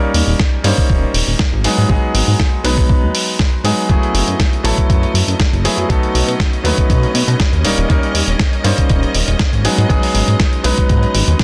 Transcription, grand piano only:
Already playing: G3 A#3 C#4 D#4 A#4
0.64 G3 A#3 C#4 D#4 C5
1.64 F#3 G#3 B3 D#4 G#4
1.89 F#3 G#3 B3 D#4 G#4
2.64 F#3 G#3 B3 D#4 B4
3.64 F#3 G#3 B3 D#4 G#4
3.89 F#3 A3 B3 E4 G#4
4.63 F#3 A3 B3 E4 A4
5.64 F#3 A3 B3 E4 G#4
5.89 F#3 A3 B3 D#4 A4
6.64 F#3 A3 B3 D#4 B4
7.64 G3 A#3 C#4 D#4 A#4
7.89 G3 A#3 C#4 D#4 A#4
8.64 G3 A#3 C#4 D#4 C5
9.64 F#3 G#3 B3 D#4 G#4
9.89 F#3 G#3 B3 D#4 G#4
10.63 F#3 G#3 B3 D#4 B4

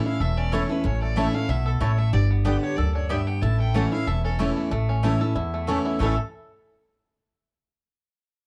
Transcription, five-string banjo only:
Already playing: A3 C#4
0.06 E4
0.20 A4
0.38 C#4
0.53 E4
0.70 A3
0.85 C#4
1.02 A3
1.17 E4
1.34 A3
1.49 E4
1.66 A4
1.81 E4
1.98 A3
2.13 G4
2.31 B3
2.45 D4
2.63 G4
2.78 A4
2.95 D4
3.10 G4
3.27 B3
3.42 E4
3.60 A3
3.75 C#4
3.92 E4
4.07 A4
4.24 C#4
4.39 E4
4.57 A3
4.71 A3
4.89 C#4
5.04 E4
5.21 A4
5.36 E4
5.54 A3
5.68 C#4
5.85 E4
6.00 A3 C#4 E4
6.06 A4

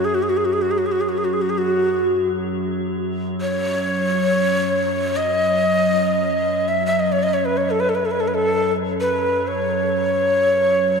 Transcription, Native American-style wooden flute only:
0.05 G#4
0.15 F#4
0.23 G#4
0.29 F#4
0.37 G#4
0.45 F#4
0.53 G#4
0.62 F#4
0.71 G#4
0.78 F#4
0.86 G#4
0.92 F#4
1.01 G#4
1.09 F#4
1.18 G#4
1.25 F#4
1.33 G#4
1.42 F#4
1.50 G#4
1.58 F#4
3.41 C#5
5.16 D#5
6.68 E5
6.86 E5
7.00 D#5
7.12 C#5
7.23 D#5
7.34 C#5
7.45 B4
7.57 C#5
7.70 A4
7.80 B4
7.89 A4
7.95 B4
8.05 A4
8.11 B4
8.20 A4
8.28 B4
8.35 A4
9.01 B4
9.48 C#5

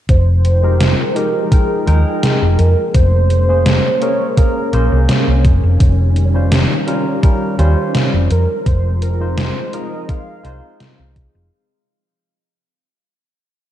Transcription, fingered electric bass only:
0.09 F1
1.87 D#2
2.42 F1
2.59 F2
2.95 F1
4.73 A#1
4.92 C2
5.28 C2
5.45 F1
5.63 F1
5.80 F1
7.59 D#2
8.14 F1
8.30 F2
8.66 F1
10.45 C2
10.99 C2
11.35 F1

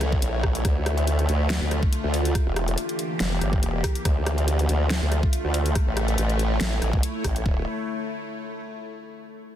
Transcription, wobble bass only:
Already playing: C#2
0.22 A#1
0.65 D2
1.29 D2
1.61 D2
2.04 D2
2.46 E1
3.20 F1
3.41 G1
3.63 E1
4.05 D2
4.69 D2
5.02 D2
5.44 D2
5.87 A1
6.18 A1
6.61 A1
6.82 A1
7.24 A1
7.46 D1

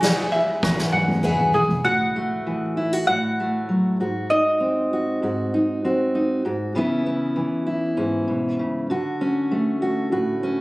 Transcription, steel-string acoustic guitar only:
1.84 A2 F#4
2.16 A3
2.47 E3
2.77 E4
2.93 F#4
3.09 A2 F#4
3.40 A3
3.69 F#3
4.00 G#2 F#4
4.31 D#4
4.60 C4
4.93 F#4
5.22 G#2 F#4
5.54 D#4
5.84 C4 F#4
6.15 D#4
6.45 G#2 F#4
6.75 C#3 E3 B3 C#4 E4
7.06 B3
7.36 E3
7.67 E4
7.97 G#2 C#4
8.28 B2
8.59 C#3
8.90 D3 F#4
9.21 C#4
9.51 A3
9.82 F#4
10.12 A2 F#4
10.43 C#4

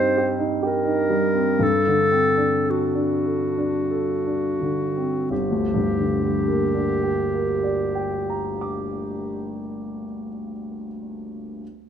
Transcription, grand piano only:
Already playing: G2 G3 C4 D#4 G4
0.17 G4
0.39 D#4
0.63 G4
0.85 D#4
1.10 G3
1.35 C4
1.59 G2
1.87 D3
2.11 C4
2.38 D4
2.66 A4
2.95 D4
3.25 A4
3.58 D4
3.90 A4
4.26 D4
4.60 D3
4.97 C4
5.30 G1
5.51 D2
5.74 G2
5.98 D3
6.22 G3
6.48 A#3
6.74 D4
7.03 G4
7.33 A#4
7.63 D5
7.95 G5
8.30 A#5
8.61 D6

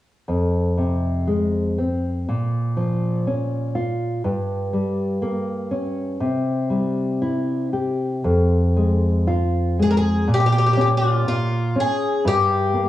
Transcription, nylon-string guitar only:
0.28 F2
0.78 C3
1.27 G#3
1.78 C4
2.29 A#2
2.77 F3
3.27 C#4
3.75 F4
4.24 G2
4.73 G3
5.22 A#3
5.71 C#4
6.20 C3
6.70 G3
7.22 E4
7.73 G4
8.24 F2
8.76 G#3
9.27 F4
9.79 G#3
10.27 A#2
10.77 C#4
11.27 A#2
11.76 C#4
12.25 G2
12.73 A#3

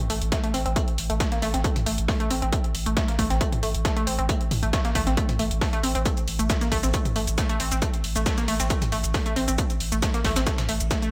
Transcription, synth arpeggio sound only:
0.10 A3
0.32 A3
0.44 A3
0.54 C4
0.66 C4
0.76 A3
1.10 A3
1.20 A3
1.32 A#3
1.42 A3
1.54 C4
1.64 A3
1.86 A3
2.08 A3
2.20 A3
2.30 C4
2.42 C4
2.52 A3
2.86 A3
2.97 A3
3.08 A#3
3.19 A3
3.30 C4
3.41 A3
3.63 A3
3.85 A3
3.96 A3
4.07 C4
4.18 C4
4.29 A3
4.63 A3
4.73 A3
4.85 A#3
4.95 A3
5.07 C4
5.17 A3
5.39 A3
5.61 A3
5.73 A3
5.83 C4
5.95 C4
6.05 A3
6.39 A3
6.50 A3
6.61 A#3
6.72 A3
6.83 C4
6.94 A3
7.16 A3
7.38 A3
7.49 A3
7.60 C4
7.71 C4
7.82 A3
8.16 A3
8.26 A3
8.38 A#3
8.48 A3
8.60 C4
8.70 A3
8.92 A3
9.14 A3
9.26 A3
9.36 C4
9.48 C4
9.58 A3
9.92 A3
10.02 A3
10.14 A#3
10.25 A3
10.36 C4
10.47 A3
10.69 A3
10.91 A3
11.02 A3

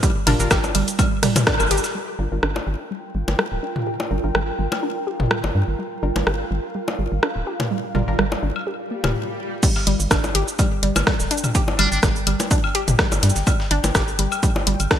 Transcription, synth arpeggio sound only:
0.03 G3
0.27 D4
0.51 G4
0.75 G3
0.99 G3
1.23 G3
1.47 D4
1.71 G4
1.95 G3
2.19 G3
2.43 D4
2.67 G4
2.91 G3
3.15 G3
3.39 G3
3.63 D4
3.87 G4
4.11 G3
4.35 G3
4.59 G3
4.83 D4
5.07 G4
5.31 G3
5.55 G3
5.79 G3
6.03 D4
6.27 G4
6.51 G3
6.75 G3
6.99 G3
7.23 D4
7.47 G4
7.71 G3
7.95 G3
8.19 G3
8.43 D4
8.67 G4
8.91 A#3
9.63 G3
9.87 G3
10.11 D4
10.35 G4
10.59 G3
10.83 G3
11.07 G3
11.31 D4
11.55 G4
11.79 G3
12.03 G3
12.27 G3
12.51 D4
12.75 G4
12.99 G3
13.23 G3
13.47 G3
13.71 D4
13.95 G4
14.19 G3
14.43 G3
14.67 G3
14.91 D4

